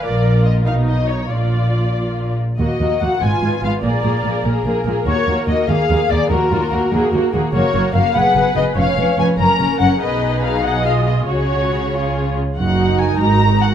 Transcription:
<<
  \new Staff \with { instrumentName = "Violin section" } { \time 6/8 \key ees \minor \tempo 4. = 96 f'4. dis'4. | f'2~ f'8 r8 | ees''4 ges''8 aes''4 f''8 | bes'2~ bes'8 r8 |
des''4 ees''8 f''4 d''8 | bes'2~ bes'8 r8 | \key fis \major cis''4 eis''8 fis''4 dis''8 | eis''4 gis''8 ais''4 fis''8 |
dis''4 eis''8 fis''8 eis''8 dis''8 | cis''2~ cis''8 r8 | ais'2. | }
  \new Staff \with { instrumentName = "Viola section" } { \time 6/8 \key ees \minor << { bes'4. dis'4. | f'2~ f'16 r8. | ges'4. f'4. | d''4. bes'4.~ |
bes'4. aes'4. | ges'8 f'8 ges'8 aes'8 ges'8 aes'8 | \key fis \major ais'4. b'4. | cis''4. ais'4. |
b'4. dis''4. | cis''2~ cis''16 r8. | fis'4. fis'4. | } \\ { r2. | r2. | r2. | r2. |
r2. | r2. | r2. | r2. |
r2. | r2. | dis'2. | } >> }
  \new Staff \with { instrumentName = "Violin section" } { \time 6/8 \key ees \minor << { d''4 ees''8 f''8 dis''8 des''8 | d''2~ d''8 r8 | ges'8 ges'8 ges'8 f'8 f'8 f'8 | aes'8 aes'8 aes'8 aes'8 aes'8 aes'8 |
ges'8 ges'8 ges'8 aes'8 aes'8 aes'8 | ges'8 ges'8 ges'8 ges'8 ges'8 ges'8 | \key fis \major fis'8 fis'8 fis'8 gis'8 gis'8 gis'8 | b'8 b'8 b'8 ais'8 ais'8 ais'8 |
gis'2. | gis'4. gis'4 r8 | fis''4 gis''8 ais''4 fis''8 | } \\ { r2. | r2. | bes8 bes8 bes8 ces'8 ces'8 ces'8 | bes8 bes8 bes8 bes8 bes8 bes8 |
bes8 bes8 bes8 bes8 bes8 bes8 | bes8 bes8 bes8 bes8 bes8 bes8 | ais8 ais8 ais8 b8 b8 b8 | cis'8 cis'8 cis'8 cis'8 cis'8 cis'8 |
dis'2 eis'4 | fis'4. eis'4 r8 | r2. | } >> }
  \new Staff \with { instrumentName = "Cello section" } { \clef bass \time 6/8 \key ees \minor bes,4. b,4. | bes,2~ bes,8 r8 | ees,8 ees,8 ees,8 aes,8 aes,8 aes,8 | bes,8 bes,8 bes,8 bes,8 bes,8 bes,8 |
ees,8 ees,8 ees,8 ees,8 ees,8 ees,8 | ees,8 ees,8 ees,8 ees,8 ees,8 ees,8 | \key fis \major fis,8 fis,8 fis,8 fis,8 fis,8 fis,8 | eis,8 eis,8 eis,8 fis,8 fis,8 fis,8 |
b,2. | cis2~ cis8 r8 | fis,4. gis,4. | }
  \new Staff \with { instrumentName = "Double bass section" } { \clef bass \time 6/8 \key ees \minor bes,,4. b,,4. | bes,,2~ bes,,8 r8 | ees,8 ees,8 ees,8 aes,,8 aes,,8 aes,,8 | bes,,8 bes,,8 bes,,8 bes,,8 bes,,8 bes,,8 |
ees,8 ees,8 ees,8 ees,8 ees,8 ees,8 | ees,8 ees,8 ees,8 ees,8 ees,8 ees,8 | \key fis \major fis,,8 fis,,8 fis,,8 fis,,8 fis,,8 fis,,8 | eis,,8 eis,,8 eis,,8 fis,,8 fis,,8 fis,,8 |
b,,2. | cis,2~ cis,8 r8 | fis,,4. gis,,4. | }
>>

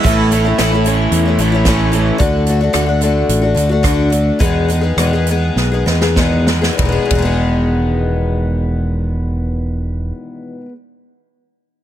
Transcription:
<<
  \new Staff \with { instrumentName = "Harmonica" } { \time 4/4 \key e \major \tempo 4 = 101 e'4 r2. | r1 | r1 | r1 |
r1 | }
  \new Staff \with { instrumentName = "Overdriven electric guitar" } { \time 4/4 \key e \major a,8 a8 e'8 cis'8 e8 a8 cis'8 e8 | r1 | r1 | r1 |
r1 | }
  \new Staff \with { instrumentName = "Twelve-string acoustic guitar" } { \time 4/4 \key e \major <a, e a cis' e'>8 <e a cis' e'>16 <a cis' e'>16 <a, e a cis' e'>16 <a cis' e'>16 <e a cis' e'>8. <a cis' e'>16 <e a cis' e'>16 <a cis' e'>16 <a, e a cis' e'>8 <e a cis' e'>8 | <d a d' fis'>8 <d a d' fis'>16 <a d' fis'>16 <d a d' fis'>16 <a d' fis'>16 <d a d' fis'>8. <a d' fis'>16 <d a d' fis'>16 <a d' fis'>16 <d a d' fis'>8 <d a d' fis'>8 | <e, b, dis gis b gis'>8 <dis gis b gis'>16 <dis gis b gis'>16 <e, b, dis gis b gis'>16 <dis gis b gis'>16 <dis gis b gis'>8. <dis gis b gis'>16 <dis gis b gis'>16 <dis gis b gis'>16 <e, b, dis gis b gis'>8 <dis gis b gis'>16 <dis gis b gis'>16 | <e, b, dis gis b gis'>16 r16 <e, b, dis gis b gis'>2.~ <e, b, dis gis b gis'>8~ |
<e, b, dis gis b gis'>1 | }
  \new Staff \with { instrumentName = "Fingered electric bass" } { \clef bass \time 4/4 \key e \major a,,4 a,,4 e,8 a,,4. | d,4 d,4 a,,8 d,4. | e,4 e,4 b,,8 e,4. | e,,8 e,,2.~ e,,8~ |
e,,1 | }
  \new DrumStaff \with { instrumentName = "Drums" } \drummode { \time 4/4 <hh bd>8 hh8 <hh sn>8 hh8 hh8 hh8 <hh bd sn>8 hh8 | <hh bd>8 hh8 <hh ss>8 hh8 hh8 hh8 <hh bd ss>8 hh8 | <hh bd>8 hh8 <hh ss>8 hh8 sn8 sn16 sn16 <bd sn>8 sn16 sn16 | <bd cymr>8 <bd cymr>8 r4 r4 r4 |
r4 r4 r4 r4 | }
>>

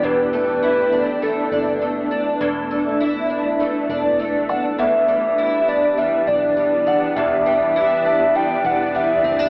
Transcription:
<<
  \new Staff \with { instrumentName = "Soft synth lead" } { \time 4/4 \key e \minor \tempo 4 = 101 b'2 a'4. r8 | r2 r8 d''4 fis''8 | e''4. d''8 e''8 d''4 fis''8 | e''4. e''8 g''8 fis''8 e''4 | }
  \new Staff \with { instrumentName = "Twelve-string acoustic guitar" } { \time 4/4 \key e \minor e,8 a8 e'8 d'8 a8 d'8 a8 d'8 | e,8 a8 e'8 d'8 a8 d'8 a8 d'8 | e,8 g8 e'8 d'8 g8 d'8 g8 d'8 | e,8 g8 e'8 d'8 g8 d'8 g8 c'16 d'16 | }
  \new Staff \with { instrumentName = "Ambient pad" } { \time 4/4 \key e \minor << { r1 | r1 | <e g'>1~ | <e g'>1 | } \\ { <a b d'>1~ | <a b d'>1~ | <a b d'>1~ | <a b d'>1 | } >> }
  \new Staff \with { instrumentName = "Picked electric bass" } { \clef bass \time 4/4 \key e \minor e,,2~ e,,8 fis,,4. | e,,2~ e,,8 e,,4 fis,,8 | e,,2~ e,,8 b,,4. | e,,2~ e,,8 e,,4 fis,,8 | }
>>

